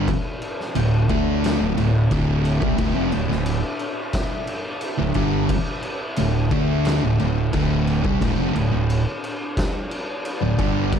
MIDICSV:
0, 0, Header, 1, 5, 480
1, 0, Start_track
1, 0, Tempo, 678733
1, 53, Time_signature, 4, 2, 24, 8
1, 7774, End_track
2, 0, Start_track
2, 0, Title_t, "Synth drone"
2, 0, Program_c, 0, 95
2, 0, Note_on_c, 0, 62, 80
2, 0, Note_on_c, 0, 76, 91
2, 5793, Note_off_c, 0, 76, 0
2, 5820, Note_on_c, 0, 74, 96
2, 7774, Note_off_c, 0, 62, 0
2, 7774, Note_off_c, 0, 74, 0
2, 7774, End_track
3, 0, Start_track
3, 0, Title_t, "Distorted electric guitar"
3, 0, Program_c, 1, 30
3, 537, Note_on_c, 1, 38, 66
3, 537, Note_on_c, 1, 45, 66
3, 727, Note_off_c, 1, 38, 0
3, 727, Note_off_c, 1, 45, 0
3, 774, Note_on_c, 1, 50, 104
3, 776, Note_on_c, 1, 57, 101
3, 779, Note_on_c, 1, 62, 103
3, 1126, Note_off_c, 1, 50, 0
3, 1127, Note_off_c, 1, 57, 0
3, 1129, Note_off_c, 1, 62, 0
3, 1133, Note_on_c, 1, 38, 59
3, 1133, Note_on_c, 1, 45, 72
3, 1245, Note_off_c, 1, 38, 0
3, 1245, Note_off_c, 1, 45, 0
3, 1253, Note_on_c, 1, 38, 67
3, 1254, Note_on_c, 1, 45, 73
3, 1445, Note_off_c, 1, 38, 0
3, 1445, Note_off_c, 1, 45, 0
3, 1496, Note_on_c, 1, 38, 91
3, 1498, Note_on_c, 1, 45, 96
3, 1500, Note_on_c, 1, 50, 98
3, 1847, Note_off_c, 1, 38, 0
3, 1848, Note_off_c, 1, 45, 0
3, 1849, Note_off_c, 1, 50, 0
3, 1852, Note_on_c, 1, 48, 98
3, 1856, Note_on_c, 1, 55, 115
3, 1963, Note_off_c, 1, 48, 0
3, 1966, Note_on_c, 1, 38, 98
3, 1967, Note_off_c, 1, 55, 0
3, 1972, Note_on_c, 1, 45, 112
3, 2082, Note_off_c, 1, 38, 0
3, 2084, Note_on_c, 1, 41, 95
3, 2085, Note_off_c, 1, 45, 0
3, 2090, Note_on_c, 1, 48, 113
3, 2201, Note_off_c, 1, 41, 0
3, 2204, Note_off_c, 1, 48, 0
3, 2214, Note_on_c, 1, 38, 73
3, 2214, Note_on_c, 1, 45, 73
3, 2320, Note_off_c, 1, 38, 0
3, 2325, Note_off_c, 1, 45, 0
3, 2329, Note_on_c, 1, 38, 72
3, 2333, Note_on_c, 1, 45, 74
3, 2522, Note_off_c, 1, 38, 0
3, 2525, Note_off_c, 1, 45, 0
3, 3525, Note_on_c, 1, 38, 74
3, 3530, Note_on_c, 1, 45, 72
3, 3637, Note_off_c, 1, 38, 0
3, 3640, Note_on_c, 1, 43, 81
3, 3643, Note_off_c, 1, 45, 0
3, 3646, Note_on_c, 1, 50, 96
3, 3649, Note_on_c, 1, 55, 97
3, 3878, Note_off_c, 1, 43, 0
3, 3881, Note_off_c, 1, 50, 0
3, 3883, Note_off_c, 1, 55, 0
3, 4369, Note_on_c, 1, 38, 67
3, 4372, Note_on_c, 1, 45, 69
3, 4562, Note_off_c, 1, 38, 0
3, 4563, Note_off_c, 1, 45, 0
3, 4604, Note_on_c, 1, 50, 88
3, 4610, Note_on_c, 1, 57, 86
3, 4612, Note_on_c, 1, 62, 105
3, 4960, Note_off_c, 1, 50, 0
3, 4963, Note_off_c, 1, 57, 0
3, 4964, Note_off_c, 1, 62, 0
3, 4970, Note_on_c, 1, 38, 65
3, 4972, Note_on_c, 1, 45, 83
3, 5079, Note_off_c, 1, 38, 0
3, 5082, Note_off_c, 1, 45, 0
3, 5087, Note_on_c, 1, 38, 58
3, 5090, Note_on_c, 1, 45, 74
3, 5281, Note_off_c, 1, 38, 0
3, 5282, Note_off_c, 1, 45, 0
3, 5322, Note_on_c, 1, 38, 82
3, 5328, Note_on_c, 1, 45, 103
3, 5328, Note_on_c, 1, 50, 116
3, 5679, Note_off_c, 1, 38, 0
3, 5682, Note_off_c, 1, 45, 0
3, 5682, Note_off_c, 1, 50, 0
3, 5686, Note_on_c, 1, 48, 83
3, 5690, Note_on_c, 1, 55, 111
3, 5801, Note_off_c, 1, 48, 0
3, 5803, Note_off_c, 1, 55, 0
3, 5805, Note_on_c, 1, 38, 105
3, 5810, Note_on_c, 1, 45, 105
3, 5920, Note_off_c, 1, 38, 0
3, 5923, Note_off_c, 1, 45, 0
3, 5929, Note_on_c, 1, 41, 90
3, 5932, Note_on_c, 1, 48, 104
3, 6040, Note_off_c, 1, 41, 0
3, 6042, Note_off_c, 1, 48, 0
3, 6043, Note_on_c, 1, 38, 68
3, 6045, Note_on_c, 1, 45, 70
3, 6151, Note_off_c, 1, 38, 0
3, 6153, Note_off_c, 1, 45, 0
3, 6160, Note_on_c, 1, 38, 69
3, 6161, Note_on_c, 1, 45, 69
3, 6357, Note_off_c, 1, 38, 0
3, 6358, Note_off_c, 1, 45, 0
3, 7364, Note_on_c, 1, 38, 61
3, 7371, Note_on_c, 1, 45, 81
3, 7480, Note_off_c, 1, 38, 0
3, 7481, Note_off_c, 1, 45, 0
3, 7483, Note_on_c, 1, 43, 90
3, 7484, Note_on_c, 1, 50, 98
3, 7489, Note_on_c, 1, 55, 97
3, 7719, Note_off_c, 1, 43, 0
3, 7720, Note_off_c, 1, 50, 0
3, 7722, Note_off_c, 1, 55, 0
3, 7774, End_track
4, 0, Start_track
4, 0, Title_t, "Fingered electric bass"
4, 0, Program_c, 2, 33
4, 534, Note_on_c, 2, 26, 81
4, 757, Note_off_c, 2, 26, 0
4, 775, Note_on_c, 2, 38, 85
4, 1109, Note_off_c, 2, 38, 0
4, 1132, Note_on_c, 2, 26, 79
4, 1244, Note_off_c, 2, 26, 0
4, 1252, Note_on_c, 2, 26, 79
4, 1475, Note_off_c, 2, 26, 0
4, 1494, Note_on_c, 2, 26, 101
4, 1828, Note_off_c, 2, 26, 0
4, 1854, Note_on_c, 2, 36, 88
4, 1965, Note_off_c, 2, 36, 0
4, 1971, Note_on_c, 2, 26, 100
4, 2083, Note_off_c, 2, 26, 0
4, 2105, Note_on_c, 2, 29, 91
4, 2211, Note_off_c, 2, 29, 0
4, 2226, Note_on_c, 2, 26, 76
4, 2331, Note_off_c, 2, 26, 0
4, 2342, Note_on_c, 2, 26, 87
4, 2560, Note_off_c, 2, 26, 0
4, 3538, Note_on_c, 2, 26, 78
4, 3640, Note_off_c, 2, 26, 0
4, 3644, Note_on_c, 2, 31, 98
4, 3870, Note_off_c, 2, 31, 0
4, 4381, Note_on_c, 2, 26, 85
4, 4598, Note_off_c, 2, 26, 0
4, 4602, Note_on_c, 2, 38, 92
4, 4941, Note_off_c, 2, 38, 0
4, 4974, Note_on_c, 2, 26, 83
4, 5084, Note_off_c, 2, 26, 0
4, 5098, Note_on_c, 2, 26, 76
4, 5317, Note_off_c, 2, 26, 0
4, 5326, Note_on_c, 2, 26, 95
4, 5662, Note_off_c, 2, 26, 0
4, 5693, Note_on_c, 2, 36, 92
4, 5803, Note_off_c, 2, 36, 0
4, 5808, Note_on_c, 2, 26, 102
4, 5920, Note_off_c, 2, 26, 0
4, 5933, Note_on_c, 2, 29, 86
4, 6043, Note_off_c, 2, 29, 0
4, 6047, Note_on_c, 2, 26, 79
4, 6160, Note_off_c, 2, 26, 0
4, 6175, Note_on_c, 2, 26, 77
4, 6396, Note_off_c, 2, 26, 0
4, 7375, Note_on_c, 2, 26, 76
4, 7484, Note_off_c, 2, 26, 0
4, 7491, Note_on_c, 2, 31, 109
4, 7714, Note_off_c, 2, 31, 0
4, 7774, End_track
5, 0, Start_track
5, 0, Title_t, "Drums"
5, 56, Note_on_c, 9, 36, 105
5, 57, Note_on_c, 9, 49, 77
5, 127, Note_off_c, 9, 36, 0
5, 127, Note_off_c, 9, 49, 0
5, 294, Note_on_c, 9, 49, 54
5, 365, Note_off_c, 9, 49, 0
5, 427, Note_on_c, 9, 38, 31
5, 497, Note_off_c, 9, 38, 0
5, 531, Note_on_c, 9, 49, 78
5, 602, Note_off_c, 9, 49, 0
5, 773, Note_on_c, 9, 49, 58
5, 774, Note_on_c, 9, 36, 102
5, 843, Note_off_c, 9, 49, 0
5, 845, Note_off_c, 9, 36, 0
5, 1019, Note_on_c, 9, 49, 78
5, 1032, Note_on_c, 9, 38, 109
5, 1089, Note_off_c, 9, 49, 0
5, 1103, Note_off_c, 9, 38, 0
5, 1255, Note_on_c, 9, 49, 65
5, 1326, Note_off_c, 9, 49, 0
5, 1493, Note_on_c, 9, 36, 110
5, 1493, Note_on_c, 9, 49, 73
5, 1564, Note_off_c, 9, 36, 0
5, 1564, Note_off_c, 9, 49, 0
5, 1732, Note_on_c, 9, 49, 60
5, 1802, Note_off_c, 9, 49, 0
5, 1852, Note_on_c, 9, 36, 115
5, 1923, Note_off_c, 9, 36, 0
5, 1967, Note_on_c, 9, 49, 84
5, 1971, Note_on_c, 9, 36, 107
5, 2038, Note_off_c, 9, 49, 0
5, 2042, Note_off_c, 9, 36, 0
5, 2206, Note_on_c, 9, 49, 55
5, 2277, Note_off_c, 9, 49, 0
5, 2343, Note_on_c, 9, 38, 34
5, 2414, Note_off_c, 9, 38, 0
5, 2445, Note_on_c, 9, 49, 84
5, 2516, Note_off_c, 9, 49, 0
5, 2682, Note_on_c, 9, 49, 57
5, 2753, Note_off_c, 9, 49, 0
5, 2921, Note_on_c, 9, 49, 84
5, 2925, Note_on_c, 9, 36, 103
5, 2935, Note_on_c, 9, 38, 109
5, 2992, Note_off_c, 9, 49, 0
5, 2996, Note_off_c, 9, 36, 0
5, 3005, Note_off_c, 9, 38, 0
5, 3163, Note_on_c, 9, 49, 68
5, 3233, Note_off_c, 9, 49, 0
5, 3400, Note_on_c, 9, 49, 80
5, 3471, Note_off_c, 9, 49, 0
5, 3637, Note_on_c, 9, 49, 60
5, 3644, Note_on_c, 9, 36, 104
5, 3707, Note_off_c, 9, 49, 0
5, 3714, Note_off_c, 9, 36, 0
5, 3882, Note_on_c, 9, 49, 90
5, 3884, Note_on_c, 9, 36, 112
5, 3953, Note_off_c, 9, 49, 0
5, 3955, Note_off_c, 9, 36, 0
5, 4120, Note_on_c, 9, 49, 62
5, 4190, Note_off_c, 9, 49, 0
5, 4359, Note_on_c, 9, 49, 88
5, 4430, Note_off_c, 9, 49, 0
5, 4604, Note_on_c, 9, 49, 55
5, 4606, Note_on_c, 9, 36, 110
5, 4675, Note_off_c, 9, 49, 0
5, 4677, Note_off_c, 9, 36, 0
5, 4844, Note_on_c, 9, 49, 82
5, 4858, Note_on_c, 9, 38, 115
5, 4915, Note_off_c, 9, 49, 0
5, 4928, Note_off_c, 9, 38, 0
5, 5088, Note_on_c, 9, 49, 56
5, 5159, Note_off_c, 9, 49, 0
5, 5326, Note_on_c, 9, 36, 108
5, 5326, Note_on_c, 9, 49, 84
5, 5397, Note_off_c, 9, 36, 0
5, 5397, Note_off_c, 9, 49, 0
5, 5568, Note_on_c, 9, 49, 57
5, 5638, Note_off_c, 9, 49, 0
5, 5689, Note_on_c, 9, 36, 113
5, 5760, Note_off_c, 9, 36, 0
5, 5809, Note_on_c, 9, 36, 107
5, 5812, Note_on_c, 9, 49, 82
5, 5880, Note_off_c, 9, 36, 0
5, 5883, Note_off_c, 9, 49, 0
5, 6050, Note_on_c, 9, 49, 55
5, 6121, Note_off_c, 9, 49, 0
5, 6293, Note_on_c, 9, 49, 78
5, 6364, Note_off_c, 9, 49, 0
5, 6532, Note_on_c, 9, 49, 56
5, 6603, Note_off_c, 9, 49, 0
5, 6768, Note_on_c, 9, 49, 75
5, 6769, Note_on_c, 9, 36, 106
5, 6781, Note_on_c, 9, 38, 113
5, 6838, Note_off_c, 9, 49, 0
5, 6840, Note_off_c, 9, 36, 0
5, 6852, Note_off_c, 9, 38, 0
5, 7010, Note_on_c, 9, 49, 69
5, 7081, Note_off_c, 9, 49, 0
5, 7249, Note_on_c, 9, 49, 80
5, 7319, Note_off_c, 9, 49, 0
5, 7487, Note_on_c, 9, 36, 107
5, 7487, Note_on_c, 9, 49, 64
5, 7558, Note_off_c, 9, 36, 0
5, 7558, Note_off_c, 9, 49, 0
5, 7725, Note_on_c, 9, 49, 82
5, 7727, Note_on_c, 9, 36, 117
5, 7774, Note_off_c, 9, 36, 0
5, 7774, Note_off_c, 9, 49, 0
5, 7774, End_track
0, 0, End_of_file